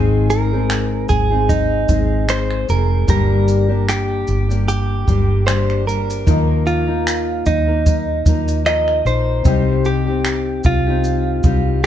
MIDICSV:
0, 0, Header, 1, 6, 480
1, 0, Start_track
1, 0, Key_signature, -3, "major"
1, 0, Tempo, 795650
1, 1865, Time_signature, 4, 2, 24, 8
1, 7157, End_track
2, 0, Start_track
2, 0, Title_t, "Felt piano"
2, 0, Program_c, 0, 0
2, 3778, Note_on_c, 0, 58, 57
2, 3791, Note_on_c, 0, 65, 52
2, 3803, Note_on_c, 0, 75, 65
2, 3887, Control_c, 0, 64, 127
2, 5677, Note_off_c, 0, 58, 0
2, 5683, Note_off_c, 0, 65, 0
2, 5689, Note_off_c, 0, 75, 0
2, 5690, Note_on_c, 0, 60, 59
2, 5704, Note_on_c, 0, 79, 56
2, 5711, Control_c, 0, 64, 0
2, 5713, Note_on_c, 0, 75, 69
2, 5829, Control_c, 0, 64, 127
2, 7157, Note_off_c, 0, 60, 0
2, 7157, Note_off_c, 0, 75, 0
2, 7157, Note_off_c, 0, 79, 0
2, 7157, End_track
3, 0, Start_track
3, 0, Title_t, "Clean electric guitar"
3, 0, Program_c, 1, 27
3, 0, Note_on_c, 1, 68, 86
3, 180, Note_off_c, 1, 68, 0
3, 182, Note_on_c, 1, 70, 101
3, 656, Note_off_c, 1, 70, 0
3, 658, Note_on_c, 1, 68, 83
3, 900, Note_on_c, 1, 63, 77
3, 909, Note_off_c, 1, 68, 0
3, 1387, Note_on_c, 1, 72, 97
3, 1397, Note_off_c, 1, 63, 0
3, 1626, Note_off_c, 1, 72, 0
3, 1628, Note_on_c, 1, 70, 85
3, 1862, Note_off_c, 1, 70, 0
3, 1869, Note_on_c, 1, 70, 93
3, 2346, Note_off_c, 1, 70, 0
3, 2349, Note_on_c, 1, 67, 82
3, 2818, Note_off_c, 1, 67, 0
3, 2825, Note_on_c, 1, 67, 83
3, 3296, Note_off_c, 1, 67, 0
3, 3298, Note_on_c, 1, 72, 86
3, 3541, Note_off_c, 1, 72, 0
3, 3543, Note_on_c, 1, 70, 83
3, 4022, Note_on_c, 1, 65, 83
3, 4038, Note_off_c, 1, 70, 0
3, 4501, Note_off_c, 1, 65, 0
3, 4504, Note_on_c, 1, 63, 79
3, 5200, Note_off_c, 1, 63, 0
3, 5227, Note_on_c, 1, 75, 95
3, 5468, Note_off_c, 1, 75, 0
3, 5470, Note_on_c, 1, 72, 86
3, 5948, Note_on_c, 1, 67, 89
3, 5961, Note_off_c, 1, 72, 0
3, 6402, Note_off_c, 1, 67, 0
3, 6431, Note_on_c, 1, 65, 86
3, 7123, Note_off_c, 1, 65, 0
3, 7157, End_track
4, 0, Start_track
4, 0, Title_t, "Steel-string acoustic guitar"
4, 0, Program_c, 2, 25
4, 0, Note_on_c, 2, 44, 69
4, 0, Note_on_c, 2, 51, 69
4, 0, Note_on_c, 2, 56, 68
4, 0, Note_on_c, 2, 60, 76
4, 0, Note_on_c, 2, 63, 75
4, 0, Note_on_c, 2, 68, 71
4, 304, Note_off_c, 2, 68, 0
4, 310, Note_off_c, 2, 63, 0
4, 311, Note_on_c, 2, 68, 49
4, 313, Note_off_c, 2, 44, 0
4, 315, Note_off_c, 2, 51, 0
4, 316, Note_off_c, 2, 56, 0
4, 317, Note_off_c, 2, 60, 0
4, 318, Note_on_c, 2, 63, 45
4, 325, Note_on_c, 2, 60, 48
4, 330, Note_on_c, 2, 56, 44
4, 780, Note_off_c, 2, 68, 0
4, 787, Note_on_c, 2, 68, 49
4, 788, Note_off_c, 2, 63, 0
4, 793, Note_off_c, 2, 60, 0
4, 795, Note_on_c, 2, 63, 44
4, 799, Note_off_c, 2, 56, 0
4, 800, Note_on_c, 2, 60, 39
4, 806, Note_on_c, 2, 56, 39
4, 1130, Note_off_c, 2, 56, 0
4, 1136, Note_off_c, 2, 60, 0
4, 1138, Note_on_c, 2, 56, 56
4, 1140, Note_off_c, 2, 68, 0
4, 1141, Note_off_c, 2, 63, 0
4, 1144, Note_on_c, 2, 60, 54
4, 1148, Note_on_c, 2, 63, 62
4, 1153, Note_on_c, 2, 68, 59
4, 1365, Note_off_c, 2, 56, 0
4, 1372, Note_off_c, 2, 60, 0
4, 1372, Note_on_c, 2, 56, 51
4, 1379, Note_off_c, 2, 63, 0
4, 1379, Note_on_c, 2, 60, 58
4, 1383, Note_off_c, 2, 68, 0
4, 1386, Note_on_c, 2, 63, 56
4, 1390, Note_on_c, 2, 68, 62
4, 1606, Note_off_c, 2, 56, 0
4, 1613, Note_off_c, 2, 60, 0
4, 1613, Note_on_c, 2, 56, 55
4, 1618, Note_off_c, 2, 63, 0
4, 1620, Note_on_c, 2, 60, 56
4, 1623, Note_off_c, 2, 68, 0
4, 1625, Note_on_c, 2, 63, 56
4, 1630, Note_on_c, 2, 68, 67
4, 1851, Note_on_c, 2, 43, 66
4, 1855, Note_off_c, 2, 56, 0
4, 1855, Note_on_c, 2, 50, 65
4, 1857, Note_off_c, 2, 60, 0
4, 1857, Note_on_c, 2, 55, 77
4, 1859, Note_off_c, 2, 63, 0
4, 1859, Note_on_c, 2, 58, 63
4, 1862, Note_off_c, 2, 68, 0
4, 1862, Note_on_c, 2, 62, 74
4, 1864, Note_on_c, 2, 67, 69
4, 2217, Note_off_c, 2, 67, 0
4, 2223, Note_off_c, 2, 62, 0
4, 2224, Note_on_c, 2, 67, 45
4, 2229, Note_off_c, 2, 58, 0
4, 2230, Note_off_c, 2, 43, 0
4, 2230, Note_on_c, 2, 62, 47
4, 2232, Note_off_c, 2, 50, 0
4, 2233, Note_off_c, 2, 55, 0
4, 2236, Note_on_c, 2, 58, 43
4, 2241, Note_on_c, 2, 55, 41
4, 2701, Note_off_c, 2, 67, 0
4, 2708, Note_off_c, 2, 62, 0
4, 2708, Note_on_c, 2, 67, 46
4, 2715, Note_on_c, 2, 62, 41
4, 2719, Note_off_c, 2, 55, 0
4, 2719, Note_off_c, 2, 58, 0
4, 2721, Note_on_c, 2, 58, 44
4, 2726, Note_on_c, 2, 55, 36
4, 3050, Note_off_c, 2, 55, 0
4, 3057, Note_off_c, 2, 58, 0
4, 3057, Note_on_c, 2, 55, 53
4, 3060, Note_off_c, 2, 67, 0
4, 3064, Note_off_c, 2, 62, 0
4, 3064, Note_on_c, 2, 58, 54
4, 3070, Note_on_c, 2, 62, 53
4, 3076, Note_on_c, 2, 67, 55
4, 3286, Note_off_c, 2, 55, 0
4, 3293, Note_off_c, 2, 58, 0
4, 3294, Note_on_c, 2, 55, 53
4, 3301, Note_off_c, 2, 62, 0
4, 3301, Note_on_c, 2, 58, 57
4, 3304, Note_off_c, 2, 67, 0
4, 3308, Note_on_c, 2, 62, 54
4, 3311, Note_on_c, 2, 67, 59
4, 3526, Note_off_c, 2, 55, 0
4, 3533, Note_on_c, 2, 55, 53
4, 3534, Note_off_c, 2, 58, 0
4, 3539, Note_off_c, 2, 62, 0
4, 3541, Note_on_c, 2, 58, 55
4, 3545, Note_off_c, 2, 67, 0
4, 3546, Note_on_c, 2, 62, 56
4, 3552, Note_on_c, 2, 67, 53
4, 3774, Note_off_c, 2, 58, 0
4, 3775, Note_on_c, 2, 51, 66
4, 3776, Note_off_c, 2, 55, 0
4, 3778, Note_on_c, 2, 53, 70
4, 3782, Note_off_c, 2, 62, 0
4, 3782, Note_on_c, 2, 58, 74
4, 3784, Note_off_c, 2, 67, 0
4, 3785, Note_on_c, 2, 63, 75
4, 3787, Note_on_c, 2, 70, 70
4, 4139, Note_off_c, 2, 70, 0
4, 4146, Note_on_c, 2, 70, 44
4, 4147, Note_off_c, 2, 63, 0
4, 4152, Note_off_c, 2, 51, 0
4, 4153, Note_off_c, 2, 53, 0
4, 4155, Note_off_c, 2, 58, 0
4, 4155, Note_on_c, 2, 63, 42
4, 4163, Note_on_c, 2, 58, 40
4, 4623, Note_off_c, 2, 70, 0
4, 4630, Note_on_c, 2, 70, 44
4, 4637, Note_off_c, 2, 63, 0
4, 4639, Note_on_c, 2, 63, 42
4, 4640, Note_off_c, 2, 58, 0
4, 4647, Note_on_c, 2, 58, 39
4, 4977, Note_off_c, 2, 58, 0
4, 4977, Note_on_c, 2, 53, 50
4, 4981, Note_off_c, 2, 70, 0
4, 4983, Note_off_c, 2, 63, 0
4, 4984, Note_on_c, 2, 58, 56
4, 4990, Note_on_c, 2, 63, 61
4, 4997, Note_on_c, 2, 70, 58
4, 5212, Note_off_c, 2, 53, 0
4, 5219, Note_off_c, 2, 58, 0
4, 5219, Note_on_c, 2, 53, 57
4, 5225, Note_off_c, 2, 63, 0
4, 5227, Note_on_c, 2, 58, 55
4, 5231, Note_off_c, 2, 70, 0
4, 5232, Note_on_c, 2, 63, 67
4, 5237, Note_on_c, 2, 70, 63
4, 5451, Note_off_c, 2, 53, 0
4, 5458, Note_off_c, 2, 58, 0
4, 5458, Note_on_c, 2, 53, 58
4, 5463, Note_off_c, 2, 63, 0
4, 5465, Note_on_c, 2, 58, 57
4, 5468, Note_off_c, 2, 70, 0
4, 5470, Note_on_c, 2, 63, 61
4, 5476, Note_on_c, 2, 70, 67
4, 5698, Note_on_c, 2, 48, 68
4, 5701, Note_off_c, 2, 53, 0
4, 5703, Note_off_c, 2, 63, 0
4, 5704, Note_off_c, 2, 58, 0
4, 5704, Note_on_c, 2, 55, 73
4, 5706, Note_on_c, 2, 60, 67
4, 5710, Note_off_c, 2, 70, 0
4, 5710, Note_on_c, 2, 63, 81
4, 5712, Note_on_c, 2, 67, 76
4, 6066, Note_off_c, 2, 67, 0
4, 6073, Note_off_c, 2, 48, 0
4, 6073, Note_on_c, 2, 67, 54
4, 6074, Note_off_c, 2, 63, 0
4, 6076, Note_off_c, 2, 55, 0
4, 6077, Note_off_c, 2, 60, 0
4, 6081, Note_on_c, 2, 63, 44
4, 6090, Note_on_c, 2, 60, 42
4, 6547, Note_off_c, 2, 67, 0
4, 6554, Note_on_c, 2, 67, 50
4, 6564, Note_off_c, 2, 63, 0
4, 6566, Note_on_c, 2, 63, 45
4, 6571, Note_off_c, 2, 60, 0
4, 6574, Note_on_c, 2, 60, 37
4, 6898, Note_off_c, 2, 60, 0
4, 6899, Note_on_c, 2, 55, 55
4, 6903, Note_off_c, 2, 67, 0
4, 6906, Note_off_c, 2, 63, 0
4, 6906, Note_on_c, 2, 60, 54
4, 6913, Note_on_c, 2, 63, 57
4, 6917, Note_on_c, 2, 67, 68
4, 7129, Note_off_c, 2, 55, 0
4, 7136, Note_off_c, 2, 60, 0
4, 7137, Note_on_c, 2, 55, 57
4, 7143, Note_off_c, 2, 63, 0
4, 7148, Note_off_c, 2, 67, 0
4, 7157, Note_off_c, 2, 55, 0
4, 7157, End_track
5, 0, Start_track
5, 0, Title_t, "Fingered electric bass"
5, 0, Program_c, 3, 33
5, 0, Note_on_c, 3, 32, 97
5, 640, Note_off_c, 3, 32, 0
5, 663, Note_on_c, 3, 32, 86
5, 1120, Note_off_c, 3, 32, 0
5, 1141, Note_on_c, 3, 32, 83
5, 1599, Note_off_c, 3, 32, 0
5, 1625, Note_on_c, 3, 29, 76
5, 1846, Note_off_c, 3, 29, 0
5, 1862, Note_on_c, 3, 31, 89
5, 2559, Note_off_c, 3, 31, 0
5, 2585, Note_on_c, 3, 31, 77
5, 3041, Note_off_c, 3, 31, 0
5, 3063, Note_on_c, 3, 31, 75
5, 3783, Note_on_c, 3, 39, 90
5, 3792, Note_off_c, 3, 31, 0
5, 4480, Note_off_c, 3, 39, 0
5, 4504, Note_on_c, 3, 39, 81
5, 4960, Note_off_c, 3, 39, 0
5, 4984, Note_on_c, 3, 39, 81
5, 5440, Note_off_c, 3, 39, 0
5, 5461, Note_on_c, 3, 34, 83
5, 5683, Note_off_c, 3, 34, 0
5, 5703, Note_on_c, 3, 36, 97
5, 6399, Note_off_c, 3, 36, 0
5, 6424, Note_on_c, 3, 36, 86
5, 6880, Note_off_c, 3, 36, 0
5, 6901, Note_on_c, 3, 36, 82
5, 7157, Note_off_c, 3, 36, 0
5, 7157, End_track
6, 0, Start_track
6, 0, Title_t, "Drums"
6, 181, Note_on_c, 9, 82, 47
6, 241, Note_off_c, 9, 82, 0
6, 421, Note_on_c, 9, 26, 106
6, 426, Note_on_c, 9, 82, 73
6, 482, Note_off_c, 9, 26, 0
6, 486, Note_off_c, 9, 82, 0
6, 657, Note_on_c, 9, 82, 42
6, 663, Note_on_c, 9, 36, 76
6, 717, Note_off_c, 9, 82, 0
6, 724, Note_off_c, 9, 36, 0
6, 901, Note_on_c, 9, 82, 62
6, 902, Note_on_c, 9, 36, 83
6, 962, Note_off_c, 9, 36, 0
6, 962, Note_off_c, 9, 82, 0
6, 1138, Note_on_c, 9, 82, 51
6, 1140, Note_on_c, 9, 36, 88
6, 1198, Note_off_c, 9, 82, 0
6, 1200, Note_off_c, 9, 36, 0
6, 1380, Note_on_c, 9, 26, 101
6, 1380, Note_on_c, 9, 82, 56
6, 1440, Note_off_c, 9, 26, 0
6, 1441, Note_off_c, 9, 82, 0
6, 1512, Note_on_c, 9, 26, 29
6, 1572, Note_off_c, 9, 26, 0
6, 1622, Note_on_c, 9, 82, 42
6, 1682, Note_off_c, 9, 82, 0
6, 1859, Note_on_c, 9, 82, 62
6, 1861, Note_on_c, 9, 36, 96
6, 1919, Note_off_c, 9, 82, 0
6, 1921, Note_off_c, 9, 36, 0
6, 2099, Note_on_c, 9, 82, 47
6, 2160, Note_off_c, 9, 82, 0
6, 2344, Note_on_c, 9, 26, 101
6, 2349, Note_on_c, 9, 82, 69
6, 2404, Note_off_c, 9, 26, 0
6, 2409, Note_off_c, 9, 82, 0
6, 2579, Note_on_c, 9, 82, 39
6, 2639, Note_off_c, 9, 82, 0
6, 2720, Note_on_c, 9, 82, 46
6, 2780, Note_off_c, 9, 82, 0
6, 2826, Note_on_c, 9, 82, 63
6, 2887, Note_off_c, 9, 82, 0
6, 3063, Note_on_c, 9, 36, 85
6, 3065, Note_on_c, 9, 82, 51
6, 3123, Note_off_c, 9, 36, 0
6, 3125, Note_off_c, 9, 82, 0
6, 3305, Note_on_c, 9, 26, 99
6, 3306, Note_on_c, 9, 82, 60
6, 3366, Note_off_c, 9, 26, 0
6, 3366, Note_off_c, 9, 82, 0
6, 3438, Note_on_c, 9, 26, 31
6, 3498, Note_off_c, 9, 26, 0
6, 3551, Note_on_c, 9, 82, 43
6, 3611, Note_off_c, 9, 82, 0
6, 3680, Note_on_c, 9, 82, 49
6, 3741, Note_off_c, 9, 82, 0
6, 3784, Note_on_c, 9, 36, 98
6, 3784, Note_on_c, 9, 82, 62
6, 3844, Note_off_c, 9, 36, 0
6, 3845, Note_off_c, 9, 82, 0
6, 4022, Note_on_c, 9, 82, 47
6, 4083, Note_off_c, 9, 82, 0
6, 4265, Note_on_c, 9, 26, 105
6, 4270, Note_on_c, 9, 82, 68
6, 4325, Note_off_c, 9, 26, 0
6, 4330, Note_off_c, 9, 82, 0
6, 4500, Note_on_c, 9, 82, 40
6, 4505, Note_on_c, 9, 36, 76
6, 4560, Note_off_c, 9, 82, 0
6, 4566, Note_off_c, 9, 36, 0
6, 4743, Note_on_c, 9, 82, 63
6, 4744, Note_on_c, 9, 36, 83
6, 4803, Note_off_c, 9, 82, 0
6, 4805, Note_off_c, 9, 36, 0
6, 4983, Note_on_c, 9, 36, 91
6, 4983, Note_on_c, 9, 82, 50
6, 5043, Note_off_c, 9, 36, 0
6, 5043, Note_off_c, 9, 82, 0
6, 5116, Note_on_c, 9, 82, 51
6, 5177, Note_off_c, 9, 82, 0
6, 5225, Note_on_c, 9, 26, 100
6, 5226, Note_on_c, 9, 82, 58
6, 5286, Note_off_c, 9, 26, 0
6, 5286, Note_off_c, 9, 82, 0
6, 5356, Note_on_c, 9, 26, 29
6, 5417, Note_off_c, 9, 26, 0
6, 5468, Note_on_c, 9, 82, 45
6, 5528, Note_off_c, 9, 82, 0
6, 5700, Note_on_c, 9, 82, 65
6, 5703, Note_on_c, 9, 36, 101
6, 5760, Note_off_c, 9, 82, 0
6, 5763, Note_off_c, 9, 36, 0
6, 5941, Note_on_c, 9, 82, 48
6, 6001, Note_off_c, 9, 82, 0
6, 6181, Note_on_c, 9, 26, 108
6, 6186, Note_on_c, 9, 82, 72
6, 6242, Note_off_c, 9, 26, 0
6, 6246, Note_off_c, 9, 82, 0
6, 6417, Note_on_c, 9, 82, 40
6, 6424, Note_on_c, 9, 36, 84
6, 6477, Note_off_c, 9, 82, 0
6, 6484, Note_off_c, 9, 36, 0
6, 6661, Note_on_c, 9, 82, 63
6, 6721, Note_off_c, 9, 82, 0
6, 6897, Note_on_c, 9, 82, 50
6, 6901, Note_on_c, 9, 36, 88
6, 6957, Note_off_c, 9, 82, 0
6, 6962, Note_off_c, 9, 36, 0
6, 7157, End_track
0, 0, End_of_file